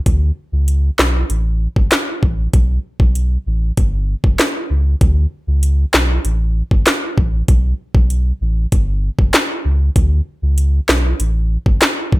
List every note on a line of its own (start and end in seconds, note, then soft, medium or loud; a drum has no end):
0.06 0.31 D2 loud
0.06 kick loud
0.06 closed hi-hat medium
0.52 0.90 C#2 medium
0.68 closed hi-hat medium
0.99 1.24 B1 medium
0.99 snare loud
0.99 clap medium
1.30 1.68 A1 loud
1.30 closed hi-hat medium
1.76 1.89 G1 loud
1.76 kick medium
1.92 snare loud
1.92 clap loud
1.92 closed hi-hat medium
2.23 2.48 A1 loud
2.23 kick loud
2.53 2.79 B1 loud
2.53 kick loud
2.53 closed hi-hat medium
3.00 3.38 B1 medium
3.00 kick medium
3.15 closed hi-hat medium
3.46 3.72 A1 medium
3.77 4.15 G1 loud
3.77 kick medium
3.77 closed hi-hat medium
4.24 4.36 F#1 medium
4.24 kick loud
4.39 snare loud
4.39 clap loud
4.39 closed hi-hat medium
4.70 4.95 C#2 medium
5.01 5.26 D2 loud
5.01 kick loud
5.01 closed hi-hat medium
5.47 5.85 C#2 medium
5.63 closed hi-hat medium
5.94 6.19 B1 loud
5.94 snare loud
5.94 clap loud
6.25 6.62 A1 loud
6.25 closed hi-hat medium
6.71 6.84 G1 loud
6.71 kick loud
6.86 snare loud
6.86 clap loud
6.86 closed hi-hat medium
7.18 7.43 A1 loud
7.18 kick loud
7.48 7.74 B1 loud
7.48 kick loud
7.48 closed hi-hat medium
7.95 8.32 B1 medium
7.95 kick loud
8.10 closed hi-hat medium
8.41 8.66 A1 medium
8.72 9.10 G1 loud
8.72 kick medium
8.72 closed hi-hat medium
9.19 9.31 F#1 medium
9.19 kick loud
9.34 snare loud
9.34 clap loud
9.34 closed hi-hat medium
9.65 9.90 C#2 loud
9.96 10.21 D2 loud
9.96 kick loud
9.96 closed hi-hat medium
10.42 10.80 C#2 medium
10.58 closed hi-hat medium
10.89 11.14 B1 medium
10.89 snare loud
10.89 clap loud
11.20 11.57 A1 loud
11.20 closed hi-hat medium
11.66 11.79 G1 loud
11.66 kick loud
11.82 snare loud
11.82 clap loud
11.82 closed hi-hat medium
12.12 12.20 A1 loud
12.12 kick loud